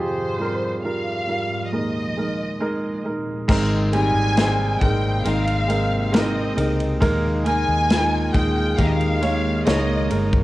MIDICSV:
0, 0, Header, 1, 7, 480
1, 0, Start_track
1, 0, Key_signature, -4, "major"
1, 0, Tempo, 882353
1, 1899, Time_signature, 4, 2, 24, 8
1, 5678, End_track
2, 0, Start_track
2, 0, Title_t, "Violin section"
2, 0, Program_c, 0, 48
2, 0, Note_on_c, 0, 72, 73
2, 438, Note_off_c, 0, 72, 0
2, 461, Note_on_c, 0, 77, 72
2, 918, Note_off_c, 0, 77, 0
2, 940, Note_on_c, 0, 75, 64
2, 1659, Note_off_c, 0, 75, 0
2, 2147, Note_on_c, 0, 80, 122
2, 2601, Note_off_c, 0, 80, 0
2, 2628, Note_on_c, 0, 79, 93
2, 2863, Note_off_c, 0, 79, 0
2, 2866, Note_on_c, 0, 77, 89
2, 3342, Note_off_c, 0, 77, 0
2, 3347, Note_on_c, 0, 75, 74
2, 3703, Note_off_c, 0, 75, 0
2, 4061, Note_on_c, 0, 80, 125
2, 4518, Note_off_c, 0, 80, 0
2, 4541, Note_on_c, 0, 79, 98
2, 4778, Note_on_c, 0, 77, 94
2, 4780, Note_off_c, 0, 79, 0
2, 4816, Note_off_c, 0, 77, 0
2, 4822, Note_on_c, 0, 75, 75
2, 4857, Note_off_c, 0, 75, 0
2, 4857, Note_on_c, 0, 77, 86
2, 5254, Note_on_c, 0, 75, 82
2, 5259, Note_off_c, 0, 77, 0
2, 5595, Note_off_c, 0, 75, 0
2, 5678, End_track
3, 0, Start_track
3, 0, Title_t, "Grand piano"
3, 0, Program_c, 1, 0
3, 0, Note_on_c, 1, 41, 53
3, 0, Note_on_c, 1, 48, 51
3, 0, Note_on_c, 1, 65, 71
3, 0, Note_on_c, 1, 67, 73
3, 0, Note_on_c, 1, 68, 81
3, 72, Control_c, 1, 64, 127
3, 202, Note_off_c, 1, 67, 0
3, 204, Note_off_c, 1, 65, 0
3, 206, Note_off_c, 1, 68, 0
3, 215, Note_on_c, 1, 55, 65
3, 218, Note_on_c, 1, 65, 63
3, 225, Note_on_c, 1, 70, 81
3, 444, Note_off_c, 1, 55, 0
3, 446, Note_off_c, 1, 65, 0
3, 450, Note_off_c, 1, 70, 0
3, 455, Note_on_c, 1, 55, 56
3, 459, Note_on_c, 1, 65, 52
3, 464, Note_on_c, 1, 70, 66
3, 682, Note_off_c, 1, 55, 0
3, 686, Note_off_c, 1, 65, 0
3, 689, Note_off_c, 1, 70, 0
3, 690, Note_on_c, 1, 55, 53
3, 696, Note_on_c, 1, 65, 50
3, 702, Note_on_c, 1, 70, 56
3, 915, Note_off_c, 1, 41, 0
3, 915, Note_off_c, 1, 48, 0
3, 922, Note_off_c, 1, 55, 0
3, 925, Note_off_c, 1, 65, 0
3, 928, Note_off_c, 1, 70, 0
3, 936, Note_on_c, 1, 56, 55
3, 939, Note_on_c, 1, 39, 46
3, 940, Note_on_c, 1, 46, 52
3, 940, Note_on_c, 1, 63, 50
3, 943, Note_on_c, 1, 70, 64
3, 946, Control_c, 1, 64, 0
3, 1028, Control_c, 1, 64, 127
3, 1165, Note_off_c, 1, 56, 0
3, 1167, Note_off_c, 1, 63, 0
3, 1169, Note_off_c, 1, 70, 0
3, 1179, Note_on_c, 1, 56, 61
3, 1183, Note_on_c, 1, 63, 53
3, 1188, Note_on_c, 1, 70, 64
3, 1407, Note_off_c, 1, 56, 0
3, 1409, Note_off_c, 1, 63, 0
3, 1411, Note_off_c, 1, 70, 0
3, 1417, Note_on_c, 1, 56, 81
3, 1419, Note_on_c, 1, 63, 65
3, 1424, Note_on_c, 1, 70, 84
3, 1645, Note_off_c, 1, 56, 0
3, 1647, Note_off_c, 1, 63, 0
3, 1649, Note_off_c, 1, 70, 0
3, 1654, Note_on_c, 1, 56, 62
3, 1659, Note_on_c, 1, 63, 60
3, 1664, Note_on_c, 1, 70, 72
3, 1877, Note_off_c, 1, 39, 0
3, 1877, Note_off_c, 1, 46, 0
3, 1884, Note_off_c, 1, 56, 0
3, 1887, Note_off_c, 1, 63, 0
3, 1889, Note_off_c, 1, 70, 0
3, 1893, Note_on_c, 1, 56, 110
3, 1897, Note_on_c, 1, 60, 108
3, 1899, Note_on_c, 1, 51, 78
3, 1900, Note_on_c, 1, 44, 74
3, 1901, Note_on_c, 1, 63, 97
3, 1903, Note_on_c, 1, 70, 124
3, 1907, Control_c, 1, 64, 0
3, 2013, Control_c, 1, 64, 127
3, 2123, Note_off_c, 1, 56, 0
3, 2126, Note_off_c, 1, 60, 0
3, 2127, Note_off_c, 1, 63, 0
3, 2128, Note_off_c, 1, 70, 0
3, 2131, Note_on_c, 1, 56, 88
3, 2135, Note_on_c, 1, 60, 76
3, 2138, Note_on_c, 1, 63, 70
3, 2141, Note_on_c, 1, 55, 92
3, 2363, Note_off_c, 1, 56, 0
3, 2365, Note_off_c, 1, 60, 0
3, 2366, Note_off_c, 1, 63, 0
3, 2368, Note_off_c, 1, 55, 0
3, 2374, Note_on_c, 1, 56, 74
3, 2376, Note_on_c, 1, 60, 68
3, 2380, Note_on_c, 1, 63, 66
3, 2382, Note_on_c, 1, 72, 77
3, 2597, Note_off_c, 1, 44, 0
3, 2597, Note_off_c, 1, 51, 0
3, 2604, Note_off_c, 1, 56, 0
3, 2605, Note_off_c, 1, 60, 0
3, 2607, Note_off_c, 1, 63, 0
3, 2608, Note_off_c, 1, 72, 0
3, 2615, Note_on_c, 1, 56, 72
3, 2618, Note_on_c, 1, 60, 65
3, 2622, Note_on_c, 1, 63, 68
3, 2623, Note_on_c, 1, 70, 72
3, 2845, Note_off_c, 1, 56, 0
3, 2846, Note_off_c, 1, 60, 0
3, 2848, Note_off_c, 1, 63, 0
3, 2849, Note_off_c, 1, 70, 0
3, 2853, Note_on_c, 1, 56, 64
3, 2855, Note_on_c, 1, 60, 60
3, 2858, Note_on_c, 1, 63, 61
3, 2861, Note_on_c, 1, 70, 73
3, 3081, Note_off_c, 1, 56, 0
3, 3085, Note_off_c, 1, 60, 0
3, 3086, Note_off_c, 1, 63, 0
3, 3087, Note_off_c, 1, 70, 0
3, 3090, Note_on_c, 1, 56, 72
3, 3093, Note_on_c, 1, 60, 67
3, 3095, Note_on_c, 1, 63, 61
3, 3098, Note_on_c, 1, 70, 81
3, 3321, Note_off_c, 1, 56, 0
3, 3324, Note_off_c, 1, 60, 0
3, 3325, Note_off_c, 1, 63, 0
3, 3326, Note_off_c, 1, 70, 0
3, 3329, Note_on_c, 1, 56, 89
3, 3333, Note_on_c, 1, 60, 85
3, 3336, Note_on_c, 1, 63, 86
3, 3340, Note_on_c, 1, 70, 106
3, 3559, Note_off_c, 1, 56, 0
3, 3561, Note_off_c, 1, 60, 0
3, 3564, Note_off_c, 1, 63, 0
3, 3567, Note_off_c, 1, 70, 0
3, 3567, Note_on_c, 1, 56, 64
3, 3570, Note_on_c, 1, 60, 59
3, 3572, Note_on_c, 1, 63, 63
3, 3575, Note_on_c, 1, 70, 77
3, 3800, Note_off_c, 1, 56, 0
3, 3802, Note_off_c, 1, 60, 0
3, 3803, Note_off_c, 1, 63, 0
3, 3805, Note_off_c, 1, 70, 0
3, 3810, Note_on_c, 1, 56, 115
3, 3812, Note_on_c, 1, 58, 107
3, 3815, Note_on_c, 1, 46, 77
3, 3816, Note_on_c, 1, 63, 107
3, 3817, Note_on_c, 1, 70, 122
3, 3824, Control_c, 1, 64, 0
3, 3932, Control_c, 1, 64, 127
3, 4042, Note_off_c, 1, 56, 0
3, 4043, Note_off_c, 1, 58, 0
3, 4045, Note_off_c, 1, 63, 0
3, 4046, Note_off_c, 1, 70, 0
3, 4053, Note_on_c, 1, 56, 83
3, 4056, Note_on_c, 1, 58, 69
3, 4059, Note_on_c, 1, 63, 71
3, 4061, Note_on_c, 1, 70, 93
3, 4284, Note_off_c, 1, 56, 0
3, 4285, Note_off_c, 1, 58, 0
3, 4287, Note_off_c, 1, 63, 0
3, 4288, Note_off_c, 1, 70, 0
3, 4295, Note_on_c, 1, 56, 75
3, 4298, Note_on_c, 1, 58, 62
3, 4300, Note_on_c, 1, 63, 69
3, 4304, Note_on_c, 1, 65, 83
3, 4515, Note_off_c, 1, 46, 0
3, 4521, Note_off_c, 1, 56, 0
3, 4523, Note_off_c, 1, 58, 0
3, 4527, Note_off_c, 1, 63, 0
3, 4529, Note_off_c, 1, 65, 0
3, 4529, Note_on_c, 1, 56, 70
3, 4531, Note_on_c, 1, 58, 68
3, 4535, Note_on_c, 1, 63, 64
3, 4538, Note_on_c, 1, 68, 81
3, 4762, Note_off_c, 1, 56, 0
3, 4763, Note_off_c, 1, 58, 0
3, 4765, Note_off_c, 1, 63, 0
3, 4766, Note_off_c, 1, 68, 0
3, 4772, Note_on_c, 1, 56, 68
3, 4774, Note_on_c, 1, 58, 69
3, 4778, Note_on_c, 1, 63, 56
3, 4780, Note_on_c, 1, 67, 76
3, 5001, Note_off_c, 1, 56, 0
3, 5003, Note_off_c, 1, 58, 0
3, 5006, Note_off_c, 1, 63, 0
3, 5007, Note_off_c, 1, 67, 0
3, 5009, Note_on_c, 1, 56, 79
3, 5011, Note_on_c, 1, 58, 67
3, 5014, Note_on_c, 1, 63, 71
3, 5019, Note_on_c, 1, 73, 81
3, 5241, Note_off_c, 1, 56, 0
3, 5243, Note_off_c, 1, 58, 0
3, 5244, Note_off_c, 1, 63, 0
3, 5247, Note_off_c, 1, 73, 0
3, 5249, Note_on_c, 1, 56, 92
3, 5253, Note_on_c, 1, 58, 92
3, 5255, Note_on_c, 1, 63, 84
3, 5261, Note_on_c, 1, 73, 109
3, 5482, Note_off_c, 1, 56, 0
3, 5484, Note_off_c, 1, 58, 0
3, 5485, Note_off_c, 1, 63, 0
3, 5487, Note_off_c, 1, 73, 0
3, 5494, Note_on_c, 1, 56, 74
3, 5496, Note_on_c, 1, 58, 67
3, 5500, Note_on_c, 1, 63, 58
3, 5501, Note_on_c, 1, 70, 71
3, 5678, Note_off_c, 1, 56, 0
3, 5678, Note_off_c, 1, 58, 0
3, 5678, Note_off_c, 1, 63, 0
3, 5678, Note_off_c, 1, 70, 0
3, 5678, End_track
4, 0, Start_track
4, 0, Title_t, "Steel-string acoustic guitar"
4, 0, Program_c, 2, 25
4, 1897, Note_on_c, 2, 56, 85
4, 1901, Note_on_c, 2, 60, 87
4, 1904, Note_on_c, 2, 63, 98
4, 1908, Note_on_c, 2, 70, 93
4, 2372, Note_off_c, 2, 56, 0
4, 2373, Note_off_c, 2, 60, 0
4, 2374, Note_on_c, 2, 56, 59
4, 2380, Note_on_c, 2, 60, 57
4, 2383, Note_off_c, 2, 63, 0
4, 2385, Note_on_c, 2, 63, 59
4, 2387, Note_off_c, 2, 70, 0
4, 2389, Note_on_c, 2, 70, 64
4, 2608, Note_off_c, 2, 70, 0
4, 2615, Note_on_c, 2, 70, 44
4, 2616, Note_off_c, 2, 56, 0
4, 2617, Note_off_c, 2, 63, 0
4, 2619, Note_off_c, 2, 60, 0
4, 2623, Note_on_c, 2, 63, 41
4, 2631, Note_on_c, 2, 60, 38
4, 2854, Note_off_c, 2, 60, 0
4, 2856, Note_on_c, 2, 56, 69
4, 2857, Note_off_c, 2, 63, 0
4, 2857, Note_off_c, 2, 70, 0
4, 2861, Note_on_c, 2, 60, 82
4, 2864, Note_on_c, 2, 63, 86
4, 2867, Note_on_c, 2, 70, 89
4, 3332, Note_off_c, 2, 56, 0
4, 3334, Note_on_c, 2, 56, 60
4, 3335, Note_off_c, 2, 60, 0
4, 3342, Note_on_c, 2, 60, 61
4, 3344, Note_off_c, 2, 63, 0
4, 3346, Note_on_c, 2, 63, 62
4, 3348, Note_off_c, 2, 70, 0
4, 3350, Note_on_c, 2, 70, 73
4, 3568, Note_off_c, 2, 70, 0
4, 3574, Note_on_c, 2, 70, 56
4, 3576, Note_off_c, 2, 56, 0
4, 3576, Note_off_c, 2, 63, 0
4, 3580, Note_off_c, 2, 60, 0
4, 3583, Note_on_c, 2, 63, 55
4, 3591, Note_on_c, 2, 60, 42
4, 3816, Note_off_c, 2, 70, 0
4, 3816, Note_on_c, 2, 51, 83
4, 3818, Note_off_c, 2, 63, 0
4, 3819, Note_off_c, 2, 60, 0
4, 3821, Note_on_c, 2, 56, 100
4, 3824, Note_on_c, 2, 63, 81
4, 3827, Note_on_c, 2, 70, 94
4, 4291, Note_off_c, 2, 51, 0
4, 4293, Note_on_c, 2, 51, 65
4, 4299, Note_off_c, 2, 56, 0
4, 4301, Note_on_c, 2, 56, 66
4, 4304, Note_off_c, 2, 63, 0
4, 4306, Note_on_c, 2, 63, 68
4, 4307, Note_off_c, 2, 70, 0
4, 4310, Note_on_c, 2, 70, 68
4, 4772, Note_off_c, 2, 51, 0
4, 4774, Note_on_c, 2, 51, 91
4, 4777, Note_off_c, 2, 56, 0
4, 4779, Note_off_c, 2, 63, 0
4, 4779, Note_on_c, 2, 56, 77
4, 4781, Note_on_c, 2, 63, 82
4, 4783, Note_off_c, 2, 70, 0
4, 4785, Note_on_c, 2, 70, 89
4, 5249, Note_off_c, 2, 51, 0
4, 5252, Note_on_c, 2, 51, 64
4, 5256, Note_off_c, 2, 56, 0
4, 5258, Note_on_c, 2, 56, 61
4, 5260, Note_off_c, 2, 63, 0
4, 5263, Note_on_c, 2, 63, 68
4, 5266, Note_off_c, 2, 70, 0
4, 5268, Note_on_c, 2, 70, 64
4, 5487, Note_off_c, 2, 70, 0
4, 5493, Note_on_c, 2, 70, 54
4, 5494, Note_off_c, 2, 63, 0
4, 5495, Note_off_c, 2, 51, 0
4, 5498, Note_off_c, 2, 56, 0
4, 5501, Note_on_c, 2, 63, 49
4, 5507, Note_on_c, 2, 56, 46
4, 5678, Note_off_c, 2, 56, 0
4, 5678, Note_off_c, 2, 63, 0
4, 5678, Note_off_c, 2, 70, 0
4, 5678, End_track
5, 0, Start_track
5, 0, Title_t, "Ambient pad"
5, 0, Program_c, 3, 92
5, 0, Note_on_c, 3, 44, 69
5, 0, Note_on_c, 3, 53, 61
5, 920, Note_off_c, 3, 44, 0
5, 932, Note_off_c, 3, 53, 0
5, 937, Note_on_c, 3, 39, 67
5, 938, Note_on_c, 3, 46, 66
5, 940, Note_on_c, 3, 56, 80
5, 1888, Note_off_c, 3, 39, 0
5, 1889, Note_off_c, 3, 46, 0
5, 1890, Note_off_c, 3, 56, 0
5, 1897, Note_on_c, 3, 48, 76
5, 1897, Note_on_c, 3, 58, 79
5, 1898, Note_on_c, 3, 60, 74
5, 2849, Note_off_c, 3, 60, 0
5, 2863, Note_on_c, 3, 67, 67
5, 3798, Note_off_c, 3, 48, 0
5, 3811, Note_off_c, 3, 67, 0
5, 3822, Note_on_c, 3, 51, 69
5, 3824, Note_on_c, 3, 56, 85
5, 5678, Note_off_c, 3, 51, 0
5, 5678, Note_off_c, 3, 56, 0
5, 5678, Note_off_c, 3, 58, 0
5, 5678, End_track
6, 0, Start_track
6, 0, Title_t, "Fingered electric bass"
6, 0, Program_c, 4, 33
6, 1899, Note_on_c, 4, 32, 102
6, 2237, Note_off_c, 4, 32, 0
6, 2255, Note_on_c, 4, 32, 87
6, 2595, Note_off_c, 4, 32, 0
6, 2617, Note_on_c, 4, 32, 93
6, 2841, Note_off_c, 4, 32, 0
6, 2857, Note_on_c, 4, 32, 105
6, 3556, Note_off_c, 4, 32, 0
6, 3578, Note_on_c, 4, 37, 95
6, 3801, Note_off_c, 4, 37, 0
6, 3818, Note_on_c, 4, 39, 98
6, 4156, Note_off_c, 4, 39, 0
6, 4179, Note_on_c, 4, 39, 88
6, 4517, Note_off_c, 4, 39, 0
6, 4540, Note_on_c, 4, 39, 84
6, 4762, Note_off_c, 4, 39, 0
6, 4778, Note_on_c, 4, 39, 92
6, 5236, Note_off_c, 4, 39, 0
6, 5259, Note_on_c, 4, 37, 81
6, 5482, Note_off_c, 4, 37, 0
6, 5499, Note_on_c, 4, 31, 87
6, 5678, Note_off_c, 4, 31, 0
6, 5678, End_track
7, 0, Start_track
7, 0, Title_t, "Drums"
7, 1898, Note_on_c, 9, 49, 98
7, 1899, Note_on_c, 9, 36, 109
7, 1952, Note_off_c, 9, 49, 0
7, 1953, Note_off_c, 9, 36, 0
7, 2138, Note_on_c, 9, 51, 52
7, 2192, Note_off_c, 9, 51, 0
7, 2378, Note_on_c, 9, 51, 73
7, 2380, Note_on_c, 9, 38, 104
7, 2432, Note_off_c, 9, 51, 0
7, 2435, Note_off_c, 9, 38, 0
7, 2619, Note_on_c, 9, 36, 74
7, 2620, Note_on_c, 9, 51, 41
7, 2673, Note_off_c, 9, 36, 0
7, 2675, Note_off_c, 9, 51, 0
7, 2858, Note_on_c, 9, 51, 65
7, 2912, Note_off_c, 9, 51, 0
7, 2979, Note_on_c, 9, 51, 40
7, 3033, Note_off_c, 9, 51, 0
7, 3099, Note_on_c, 9, 51, 50
7, 3153, Note_off_c, 9, 51, 0
7, 3338, Note_on_c, 9, 51, 64
7, 3343, Note_on_c, 9, 38, 112
7, 3392, Note_off_c, 9, 51, 0
7, 3397, Note_off_c, 9, 38, 0
7, 3578, Note_on_c, 9, 51, 65
7, 3632, Note_off_c, 9, 51, 0
7, 3699, Note_on_c, 9, 51, 41
7, 3753, Note_off_c, 9, 51, 0
7, 3818, Note_on_c, 9, 36, 108
7, 3818, Note_on_c, 9, 51, 75
7, 3873, Note_off_c, 9, 36, 0
7, 3873, Note_off_c, 9, 51, 0
7, 4057, Note_on_c, 9, 51, 52
7, 4111, Note_off_c, 9, 51, 0
7, 4298, Note_on_c, 9, 51, 70
7, 4301, Note_on_c, 9, 38, 104
7, 4352, Note_off_c, 9, 51, 0
7, 4355, Note_off_c, 9, 38, 0
7, 4539, Note_on_c, 9, 36, 73
7, 4541, Note_on_c, 9, 51, 47
7, 4594, Note_off_c, 9, 36, 0
7, 4596, Note_off_c, 9, 51, 0
7, 4779, Note_on_c, 9, 36, 79
7, 4779, Note_on_c, 9, 51, 66
7, 4833, Note_off_c, 9, 36, 0
7, 4834, Note_off_c, 9, 51, 0
7, 4899, Note_on_c, 9, 51, 37
7, 4953, Note_off_c, 9, 51, 0
7, 5018, Note_on_c, 9, 51, 55
7, 5072, Note_off_c, 9, 51, 0
7, 5257, Note_on_c, 9, 51, 65
7, 5262, Note_on_c, 9, 38, 108
7, 5311, Note_off_c, 9, 51, 0
7, 5317, Note_off_c, 9, 38, 0
7, 5496, Note_on_c, 9, 51, 59
7, 5551, Note_off_c, 9, 51, 0
7, 5619, Note_on_c, 9, 36, 91
7, 5673, Note_off_c, 9, 36, 0
7, 5678, End_track
0, 0, End_of_file